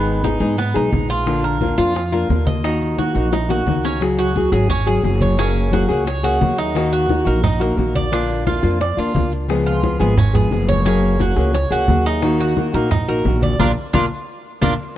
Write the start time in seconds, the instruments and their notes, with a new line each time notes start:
Already playing: upright bass G#1, nylon-string guitar D#3 G#3 B3 D#4 G#4, cuban tres B3
0.06 high bongo, high conga, maracas
0.23 nylon-string guitar G#3 B3 D#4 G#4, cuban tres D#4, high bongo, high conga, maracas
0.40 upright bass G#2, nylon-string guitar G#3 B3 D#4 G#4, maracas
0.57 cuban tres B3, muted nylon-string guitar stroke, high bongo, high conga, maracas
0.74 upright bass B1, nylon-string guitar G#3 B3 D#4 G#4, cuban tres D#4, high bongo, high conga, maracas
0.91 upright bass A#1, nylon-string guitar G#3 B3 D#4 G#4, high bongo, low bongo, high conga, maracas
1.09 cuban tres F4, high conga, maracas
1.26 nylon-string guitar D3 A#3 D4 F4, high bongo, high conga, maracas
1.43 cuban tres A#4, high bongo, high conga, maracas
1.61 nylon-string guitar D3 A#3 D4 F4, high bongo, high conga, maracas
1.78 upright bass F2, nylon-string guitar A#3 D4 F4, cuban tres F4, high conga, maracas
1.95 muted nylon-string guitar stroke, high bongo, high conga, maracas
2.12 nylon-string guitar A#3 D4 F4, cuban tres A#4, high conga, maracas
2.29 upright bass D#2, nylon-string guitar D3 A#3 D4 F4, high bongo, low bongo, high conga, maracas
2.46 cuban tres D#5, high conga, maracas
2.64 nylon-string guitar D#3 A#3 D#4 F#4, cuban tres D#4, high bongo, maracas
2.81 high bongo, high conga, maracas
2.98 nylon-string guitar D#3 A#3 D#4 F#4, cuban tres F#4, high bongo, high conga, maracas
3.15 upright bass A#1, nylon-string guitar A#3 D#4 F#4, maracas
3.31 cuban tres D#4, muted nylon-string guitar stroke, high bongo, high conga, maracas
3.49 nylon-string guitar A#3 D#4 F#4, cuban tres F#4, low bongo, high conga, maracas
3.66 upright bass C#2, nylon-string guitar D#3 A#3 D#4 F#4, low bongo, high conga, maracas
3.83 cuban tres C#4, low bongo, high conga, maracas
4.00 nylon-string guitar C#3 F#3 C#4 F#4 G#4, high bongo, high conga, maracas
4.18 cuban tres F#4, high bongo, high conga, maracas
4.35 nylon-string guitar F#3 C#4 F#4 G#4, high bongo, high conga, maracas
4.52 upright bass G#1, nylon-string guitar F#3 C#4 F#4 G#4, cuban tres G#4, high conga, maracas
4.69 cuban tres C#4, muted nylon-string guitar stroke, high bongo, high conga, low conga, maracas
4.87 nylon-string guitar F#3 C#4 F#4 G#4, cuban tres G#4, high bongo, high conga, maracas
5.03 upright bass F#1, nylon-string guitar F#3 C#4 F#4 G#4, high bongo, low bongo, high conga, maracas
5.21 cuban tres C#5, high conga, maracas
5.38 nylon-string guitar F#3 A#3 C#4 G#4, cuban tres C#4, high bongo, high conga, maracas
5.55 high bongo, high conga, maracas
5.72 nylon-string guitar F#3 A#3 C#4 G#4, cuban tres F#4, high bongo, high conga, maracas
5.89 upright bass C#2, nylon-string guitar A#3 C#4 G#4, maracas
6.06 cuban tres C#5, muted nylon-string guitar stroke, high bongo, high conga, maracas
6.23 nylon-string guitar A#3 C#4 G#4, cuban tres F#4, high bongo, high conga, maracas
6.40 upright bass D#2, nylon-string guitar F#3 A#3 C#4 G#4, high bongo, low bongo, high conga, maracas
6.57 cuban tres D#4, high conga, maracas
6.74 nylon-string guitar D#3 A#3 D#4 F#4, high bongo, high conga, maracas
6.92 cuban tres F#4, high bongo, high conga, maracas
7.09 nylon-string guitar D#3 A#3 D#4 F#4, high bongo, high conga, maracas
7.25 upright bass A#1, nylon-string guitar A#3 D#4 F#4, cuban tres A#4, high conga, maracas
7.43 cuban tres D#4, muted nylon-string guitar stroke, high bongo, high conga, low conga, maracas
7.60 nylon-string guitar A#3 D#4 F#4, cuban tres A#4, high bongo, high conga, maracas
7.77 upright bass A#1, nylon-string guitar D#3 A#3 D#4 F#4, high bongo, low bongo, high conga, maracas
7.95 cuban tres D5, high conga, maracas
8.11 nylon-string guitar D3 A#3 D4 F4, cuban tres D4, high bongo, high conga, maracas
8.29 high bongo, high conga, maracas
8.46 nylon-string guitar D3 A#3 D4 F4, cuban tres F4, high bongo, high conga, maracas
8.63 upright bass F2, nylon-string guitar A#3 D4 F4, maracas
8.80 cuban tres D5, muted nylon-string guitar stroke, high bongo, high conga, maracas
8.97 upright bass D#2, nylon-string guitar A#3 D4 F4, cuban tres F4, high bongo, high conga, maracas
9.14 upright bass C#2, nylon-string guitar A#3 D4 F4, high bongo, low bongo, high conga, maracas
9.32 high conga, maracas
9.48 nylon-string guitar C#3 F3 G#3 B3 G#4, high bongo, high conga, maracas
9.66 cuban tres F4, high bongo, high conga, maracas
9.82 nylon-string guitar F3 G#3 B3 G#4, high bongo, high conga, maracas
10.00 upright bass G#1, nylon-string guitar F3 G#3 B3 G#4, cuban tres G#4, high conga, maracas
10.17 cuban tres C#4, muted nylon-string guitar stroke, high bongo, high conga, low conga, maracas
10.34 nylon-string guitar F3 G#3 B3 G#4, cuban tres G#4, high bongo, high conga, low conga, maracas
10.51 upright bass F#1, nylon-string guitar F3 G#3 B3 G#4, high bongo, low bongo, high conga, maracas
10.69 cuban tres C#5, high conga, maracas
10.85 nylon-string guitar F#3 A#3 C#4 G#4, cuban tres C#4, high bongo, high conga, maracas
11.02 high bongo, high conga, maracas
11.19 nylon-string guitar F#3 A#3 C#4 G#4, cuban tres F#4, high bongo, high conga, maracas
11.36 upright bass C#2, nylon-string guitar A#3 C#4 G#4, maracas
11.54 cuban tres C#5, muted nylon-string guitar stroke, high bongo, high conga, maracas
11.71 upright bass C#2, nylon-string guitar A#3 C#4 G#4, cuban tres F#4, high bongo, high conga, maracas
11.88 upright bass D#2, nylon-string guitar F#3 A#3 C#4 G#4, high bongo, low bongo, high conga, maracas
12.05 cuban tres D#4, high conga, maracas
12.22 nylon-string guitar D#3 A#3 D#4 F#4, high bongo, high conga, maracas
12.40 cuban tres F#4, high bongo, high conga, maracas
12.57 nylon-string guitar D#3 A#3 D#4 F#4, high bongo, high conga, maracas
12.73 upright bass A#1, nylon-string guitar A#3 D#4 F#4, cuban tres A#4, high conga, maracas
12.91 cuban tres D#4, muted nylon-string guitar stroke, high bongo, high conga, low conga, maracas
13.08 nylon-string guitar A#3 D#4 F#4, cuban tres A#4, high bongo, high conga, maracas
13.25 upright bass A#1, nylon-string guitar D#3 A#3 D#4 F#4, high bongo, low bongo, high conga, maracas
13.43 cuban tres D5, high conga, maracas
13.59 upright bass A#1, nylon-string guitar A#3 D4 F4, cuban tres D4 F4 A#4, low bongo, high conga, maracas
13.93 upright bass A#1, nylon-string guitar A#3 D4 F4, cuban tres D4 F4 A#4, low bongo, high conga, maracas
14.61 upright bass A#1, nylon-string guitar A#3 D4 F4, cuban tres D4 F4 A#4, low bongo, high conga, maracas